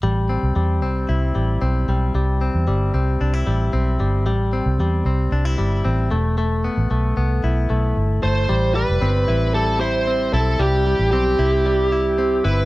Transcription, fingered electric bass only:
\new Staff \with { instrumentName = "Fingered electric bass" } { \clef bass \time 4/4 \key a \minor \tempo 4 = 114 a,,8. c,16 e,8 c,8 c,8 a,,8 b,,8 b,,8 | c,8. e,16 g,,8 c,8 c,8 a,,8 b,,8 g,,8 | a,,8. c,16 e,8 c,8 c,8 g,,8 a,,8 e,,8~ | e,,8. a,,16 b,,8 c,8 b,,8 b,,8 g,,8 g,,8 |
a,,8. f,,16 g,,8 a,,2 b,,8 | c,8. a,,16 b,,8 c,2 g,,8 | }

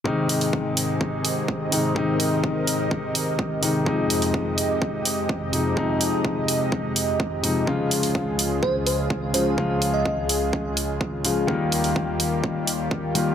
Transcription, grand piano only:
\new Staff \with { instrumentName = "Grand piano" } { \clef bass \time 4/4 \key aes \major \tempo 4 = 126 <c ees aes ees'>2.~ <c ees aes ees'>8 <c ees aes ees'>8 | <c ees aes ees'>2.~ <c ees aes ees'>8 <c ees aes ees'>8 | <c f aes ees'>2.~ <c f aes ees'>8 <c f aes ees'>8 | <c f aes ees'>2.~ <c f aes ees'>8 <c f aes ees'>8 |
<des f aes f'>2.~ <des f aes f'>8 <des f aes f'>8 | <des f aes f'>2.~ <des f aes f'>8 <des f aes f'>8 | <ees g bes f'>2.~ <ees g bes f'>8 <ees g bes f'>8 | }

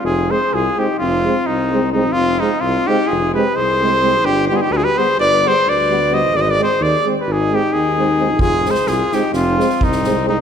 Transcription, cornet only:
\new Staff \with { instrumentName = "Cornet" } { \time 9/8 \tempo 4. = 86 aes'8 c''8 aes'8 g'8 f'4 ees'4 ees'8 | f'8 ees'8 f'8 g'8 aes'8 b'8 c''4. | g'8 g'32 aes'32 g'16 b'32 aes'32 b'16 c''8 d''8 c''8 d''4 ees''8 | d''32 ees''32 d''16 c''8 d''8 r16. b'32 aes'8 g'8 aes'4. |
aes'8 c''8 aes'8 g'8 f'4 ees'4 ees'8 | }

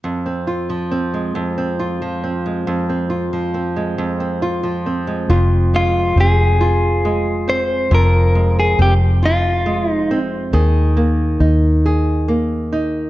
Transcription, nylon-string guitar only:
\new Staff \with { instrumentName = "Nylon-string guitar" } { \time 6/8 \key f \minor \tempo 4. = 46 f,16 c'16 f'16 f16 c'16 aes16 f,16 c'16 f'16 f16 c'16 aes16 | f,16 c'16 f'16 f16 c'16 aes16 f,16 c'16 f'16 f16 c'16 aes16 | <f, f'>8 aes8 c'8 f'8 aes8 c'8 | <f, f'>8 aes8 c'8 f'8 aes8 c'8 |
<ees aes'>8 bes8 ees'8 aes'8 bes8 ees'8 | }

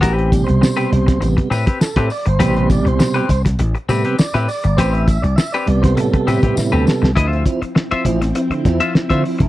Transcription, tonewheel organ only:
<<
  \new Staff \with { instrumentName = "Tonewheel organ" } { \time 4/4 \key a \minor \tempo 4 = 101 \tuplet 3/2 { g'4 c''8~ } c''4~ c''16 r8. a'8 d''16 c''16 | c''8 d''16 c''4 r4 r16 d''16 e''16 d''8 | c''16 e''8 d''16 e''16 d''8 c''16 a'16 a'16 g'8 e'16 a'8. | r16 <c' e'>16 <f c' e'>16 r8. <f c' e'>16 r16 <c' e'>16 r16 <f c' e'>16 r8 <f c' e'>16 r8 | }
  \new Staff \with { instrumentName = "Tonewheel organ" } { \clef bass \time 4/4 \key a \minor r8 <b, c g>4. <c g b>8 r4. | <b, c g>4. r4 <c g b>8 r4 | r4. <c g b>2~ <c g b>8 | d16 r2 d16 r4 r16 d16 | }
>>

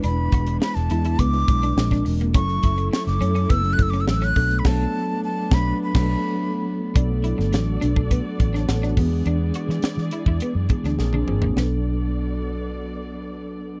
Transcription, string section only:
\new Staff \with { instrumentName = "String section" } { \time 4/4 \key b \minor \tempo 4 = 104 << { <gis b d'>2. <gis ais>4 | <cis' e' a'>2.~ <cis' e' a'>8 <a b d'>8~ | <a b d'>1 | <fis' a' d''>2.~ <fis' a' d''>8 <e' gis' d''>8~ |
<e' gis' d''>2. <gis' ais' d''>4 | <b, b a' d''>1 | } \\ { e2. r4 | fis2.~ fis8 r8 | r1 | b1~ |
b2. bis4 | r1 | } >> }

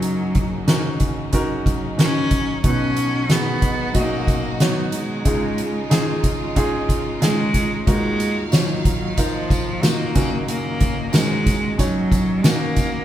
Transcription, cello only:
\new Staff \with { instrumentName = "Cello" } { \clef bass \time 4/4 \key ges \major \tempo 4 = 92 ges4. r4. des'4 | des'4 b4 bes4 fis8 aes8~ | aes4. r4. aes4 | aes4 ges4 f4 bes4 |
bes4 aes4 ges4 bes4 | }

